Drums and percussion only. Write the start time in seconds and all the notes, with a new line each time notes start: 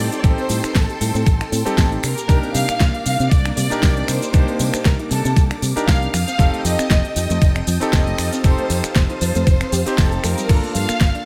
0.12 closed hi-hat, tambourine, shaker
0.24 kick, closed hi-hat, tambourine, shaker
0.38 closed hi-hat, tambourine
0.49 open hi-hat, tambourine, shaker
0.64 finger snap, closed hi-hat, tambourine, shaker
0.75 kick, snare, closed hi-hat, tambourine, shaker
0.89 closed hi-hat, tambourine
1.01 open hi-hat, tambourine, shaker
1.15 closed hi-hat, tambourine, shaker
1.26 kick, closed hi-hat, tambourine, shaker
1.41 finger snap, closed hi-hat, tambourine
1.52 open hi-hat, tambourine, shaker
1.66 closed hi-hat, tambourine, shaker
1.78 kick, snare, closed hi-hat, tambourine, shaker
1.92 closed hi-hat, tambourine
2.03 finger snap, open hi-hat, tambourine, shaker
2.17 closed hi-hat, tambourine, shaker
2.29 kick, closed hi-hat, tambourine, shaker
2.43 closed hi-hat, tambourine
2.54 open hi-hat, tambourine, shaker
2.69 finger snap, closed hi-hat, tambourine, shaker
2.80 kick, snare, closed hi-hat, tambourine, shaker
2.94 closed hi-hat, tambourine
3.06 open hi-hat, tambourine, shaker
3.20 closed hi-hat, tambourine, shaker
3.31 kick, closed hi-hat, tambourine, shaker
3.45 finger snap, closed hi-hat, tambourine
3.57 open hi-hat, tambourine, shaker
3.71 closed hi-hat, tambourine, shaker
3.83 kick, snare, closed hi-hat, tambourine, shaker
3.97 closed hi-hat, tambourine
4.08 finger snap, open hi-hat, tambourine, shaker
4.22 closed hi-hat, tambourine, shaker
4.33 kick, closed hi-hat, tambourine, shaker
4.47 closed hi-hat, tambourine
4.59 open hi-hat, tambourine, shaker
4.73 finger snap, closed hi-hat, tambourine, shaker
4.85 kick, snare, closed hi-hat, tambourine, shaker
4.99 closed hi-hat, tambourine
5.11 open hi-hat, tambourine, shaker
5.25 closed hi-hat, tambourine, shaker
5.36 kick, closed hi-hat, tambourine, shaker
5.51 finger snap, closed hi-hat, tambourine
5.62 open hi-hat, tambourine, shaker
5.76 closed hi-hat, tambourine, shaker
5.88 kick, snare, closed hi-hat, tambourine, shaker
6.02 closed hi-hat, tambourine
6.14 finger snap, open hi-hat, tambourine, shaker
6.28 closed hi-hat, tambourine, shaker
6.39 kick, closed hi-hat, tambourine, shaker
6.54 closed hi-hat, tambourine
6.65 open hi-hat, tambourine, shaker
6.79 finger snap, closed hi-hat, tambourine, shaker
6.90 kick, snare, closed hi-hat, tambourine, shaker
7.04 closed hi-hat, tambourine
7.16 open hi-hat, tambourine, shaker
7.30 closed hi-hat, tambourine, shaker
7.41 kick, closed hi-hat, tambourine, shaker
7.55 finger snap, closed hi-hat, tambourine
7.67 open hi-hat, tambourine, shaker
7.81 closed hi-hat, tambourine, shaker
7.93 kick, snare, closed hi-hat, tambourine, shaker
8.07 closed hi-hat, tambourine
8.18 finger snap, open hi-hat, tambourine, shaker
8.33 closed hi-hat, tambourine, shaker
8.44 kick, closed hi-hat, tambourine, shaker
8.58 closed hi-hat, tambourine
8.70 open hi-hat, tambourine, shaker
8.84 finger snap, closed hi-hat, shaker
8.95 kick, snare, closed hi-hat, tambourine, shaker
9.09 closed hi-hat, tambourine
9.21 open hi-hat, tambourine, shaker
9.35 closed hi-hat, tambourine, shaker
9.47 kick, closed hi-hat, tambourine, shaker
9.61 finger snap, closed hi-hat, tambourine
9.72 open hi-hat, tambourine, shaker
9.86 closed hi-hat, tambourine, shaker
9.98 kick, snare, closed hi-hat, tambourine, shaker
10.12 closed hi-hat, tambourine
10.24 finger snap, open hi-hat, tambourine, shaker
10.38 closed hi-hat, tambourine, shaker
10.49 kick, closed hi-hat, crash, tambourine, shaker
10.63 closed hi-hat, tambourine
10.75 open hi-hat, tambourine, shaker
10.89 finger snap, closed hi-hat, tambourine, shaker
11.00 kick, snare, closed hi-hat, tambourine, shaker
11.15 closed hi-hat, tambourine